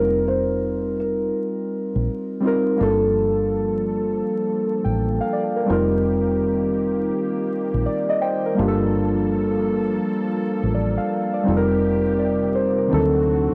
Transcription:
Already playing: F1 G3 C4 D#4 F4 A#4
0.28 C5
1.00 A#4
1.96 A#1
2.40 G3 C4 D#4
2.45 F4 A#4
2.76 F3 G3 A#3 D4 A4
2.81 G1 F4 A4
4.84 A1 G5
5.21 F5
5.33 D5
5.56 A#4
5.66 D#3 G3 C4 D#4 G4
5.70 F1 F4 A#4
7.74 A#1
7.86 D5
8.09 D5 D#5
8.21 C5 G5
8.46 A#4
8.55 G3 A#3 D4 A4
8.59 G1 F3 F4 G4
8.68 A4
10.63 A1
10.74 D5
10.97 F5
11.34 D5
11.44 C3 G3 C4 D#4 G4
11.48 F1 F4 A4
11.57 A#4
12.19 D5
12.55 C5
12.78 A#4
12.88 D#3 C4 D4
12.92 D2 F#3 C4 D#4 F#4 A4

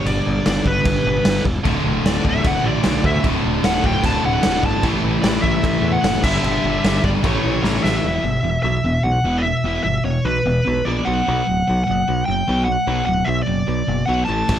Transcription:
Already playing: G2 D3 G3
0.06 G1 D5, crash
0.27 G1
0.46 G1 D5, snare, crash
0.65 G1 B4, kick
0.85 G1, kick, crash
1.06 G1
1.25 G1, snare, crash
1.45 E1, kick
1.65 D1 D2 A2 D3, kick, crash
1.84 D1
2.04 D1 D5, snare, crash
2.25 D1, kick
2.29 E5
2.44 D1 F#5, kick, crash
2.64 A1 D5
2.84 B1, snare, crash
3.04 D2 E5, kick
3.24 D1 D2 A2 D3, kick, crash
3.45 D1
3.64 D1 F#5, snare, crash
3.84 D1 G5, kick
4.04 D1 A5, kick, crash
4.25 D1 F#5
4.43 D1, snare, crash
4.63 G1 A5, kick
4.82 A1 A2 E3 A3, kick, crash
5.04 A1
5.22 A1 D5, snare, crash
5.42 A1 E5, kick
5.63 A1, kick, crash
5.82 E2
5.92 F#5
6.03 F#1, snare, crash
6.23 G1 G2 D3 G3 E5, kick, crash
6.43 G1, crash
6.64 G1
6.84 G1, snare, crash
7.04 G1 D5, kick
7.23 A1 A2 E3 A3 C#5, kick, crash
7.45 A1
7.63 A1 C#5, snare
7.84 A1 E5, snare
8.04 E1 E2 B2 E3
8.24 G1 E2 B2
8.43 E1 E2 B2
8.63 B1 E2 B2 E5
8.84 E1 E2 B2
9.03 B1 E2 B2 F#5
9.24 E1 E2 B2 E3
9.38 D5
9.43 E2 B2 E5
9.64 E1 E2 B2 E3
9.83 G1 E2 B2 E5
10.04 E1 E2 B2 C#5
10.25 B1 E2 B2 B4
10.46 E1 E2 B2
10.65 B1 E2 B2
10.85 A#1 E2 B2 E3 D5
11.05 B1 B2 F#3 B3 F#5
11.26 B1 B2 F#3 B3
11.47 D1 B2 F#3
11.67 B1 B2 F#3
11.84 B2 F#3 F#5
11.90 F#1
12.08 B1 B2 F#3
12.26 F#1 B2 F#3 G5
12.48 B1 B2 F#3 B3
12.64 B2 F#3 F#5
12.87 B1 B2 F#3 B3
13.06 D1 B2 F#3 F#5
13.25 B1 B2 F#3 E5
13.43 D5
13.47 F#1 B2 F#3
13.68 B1 B2 F#3
13.88 F#1 B2 F#3
14.06 B1 B2 F#3 B3 F#5
14.25 A1 A2 E3 A3 A5
14.49 A1 A2 E3 A3, kick, crash

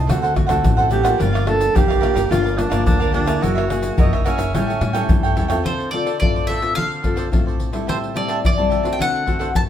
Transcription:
0.07 D2 D3 A3 C4 D4 F#4 A4 C5 F#5, pandeiro, tamborim, shaker, surdo
0.22 A4 C5 F#5, pandeiro, shaker
0.34 A3 C4, muted cavaquinho stroke, pandeiro, tamborim, surdo
0.38 F#4
0.46 D2 A3 C4 A4 C5 F#5, pandeiro, tamborim, shaker
0.51 F#4
0.64 A1 A2, pandeiro, shaker, surdo
0.77 A4 C5 F#5, pandeiro, shaker
0.89 A3 C4 D4 F#4 G4 A4 C5 F#5, pandeiro, shaker
1.03 F3 A#3 D4 A4 C5 F#5, pandeiro, tamborim, shaker
1.18 G1 G2 F4 G4 A#4 D5 F5, pandeiro, shaker, surdo
1.33 A#4 D5 F5, pandeiro, tamborim, shaker
1.46 F3 A#3 D4 A4, muted cavaquinho stroke, pandeiro, tamborim
1.61 pandeiro, shaker
1.74 G1 D3 G4 A#4 D5 F5, pandeiro, shaker, surdo
1.88 A#4 D5 F5, pandeiro, tamborim, shaker
2.00 F3 A#3 D4 G4 A#4 D5 F5, pandeiro, tamborim
2.14 G1 A#4 D5 F5, pandeiro, shaker
2.29 G1 G2 F3 A#3 D4 F4 G4 A#4 D5 F5, pandeiro, tamborim, shaker, surdo
2.43 A#4 D5 F5, pandeiro, shaker
2.57 F3 A#3 D4, muted cavaquinho stroke, pandeiro, tamborim, shaker
2.70 G1 F3 A#3 D4 A#4 D5 F5, pandeiro, tamborim, shaker
2.86 D2 D3 D4, pandeiro, shaker, surdo
3.00 A#4 D5 F5, pandeiro, shaker
3.12 F3 A#3 D4 G4 A#4 D5 F5, pandeiro
3.26 A#3 E4 G#4 A#4 D5 F5, pandeiro, tamborim, shaker
3.41 F#1 F#3 F#4 A#4 C#5 E5, pandeiro, shaker, surdo
3.55 A#4 C#5 E5, pandeiro, tamborim, shaker
3.68 A#3 E4 G#4, muted cavaquinho stroke, pandeiro, tamborim, shaker
3.83 pandeiro, shaker
3.97 F#1 C#3 D#4 F#4 A#4 C#5 E5, pandeiro, shaker, surdo
4.13 A#4 C#5 E5, pandeiro, tamborim, shaker
4.24 A#3 C#4 E4 F#4 G#4 A#4 C#5 E5, pandeiro, tamborim, shaker
4.38 F#1 A#4 C#5 E5, pandeiro, shaker
4.53 A1 A2 G3 C#4 E4 A4 C#5 G5, pandeiro, tamborim, shaker, surdo
4.67 A4 C#5 G5, pandeiro, shaker
4.81 A2 G3 C#4 E4, muted cavaquinho stroke, pandeiro, tamborim
4.93 G3 C#4 E4 A4 C#5 G5, pandeiro, tamborim, shaker
5.09 G2 E3, pandeiro, shaker, surdo
5.23 A4 C#5 G5, pandeiro, shaker
5.36 E2 G3 C#4 E4 A4 C#5 G5, pandeiro
5.48 C4 F4 A4 C#5 G5, pandeiro, tamborim, shaker
5.64 D3 F4 A4 C5 D5, pandeiro, surdo
5.80 pandeiro
5.91 C4 F4 A4 C5 D5, pandeiro
6.05 F4 A4 C5 D5, pandeiro
6.20 A2 C4 F4 A4 D5, pandeiro, surdo
6.35 A4 C5 D5, pandeiro
6.47 F4 A4 C5 D5 E5, pandeiro
6.62 C4 F4 A4 C5 D5, pandeiro
6.75 D3 F4 A4 C5 D5 F5, pandeiro, surdo
6.92 pandeiro
7.03 C4 F4 A4 C5 D5, pandeiro, surdo
7.16 F4 A4 C5 D5, pandeiro
7.32 A2 C4 F4 A4, pandeiro, surdo
7.46 A4 C5 D5, pandeiro
7.60 pandeiro
7.72 G3 C4 E4 A4 C5 D5, pandeiro
7.87 A2 G4 C5 E5 A5, pandeiro, surdo
8.04 pandeiro
8.14 G3 C4 E4 G4 C5 D5 E5 A5, pandeiro
8.28 G4 C5 E5 A5, pandeiro
8.44 E3 D5, pandeiro, surdo
8.58 G3 C4 E4 C5 E5 A5, pandeiro
8.70 G4 C5 E5 A5, pandeiro
8.83 A3 C4 F#4 C5 E5 A5, pandeiro
8.93 G5
8.98 D3 D4 A4 C5 F#5, pandeiro, surdo
9.15 pandeiro
9.26 A3 C4 D4 F#4 A4 C5 F#5, pandeiro, surdo
9.39 D4 A4 C5 F#5, pandeiro
9.54 A2 A5, pandeiro, surdo

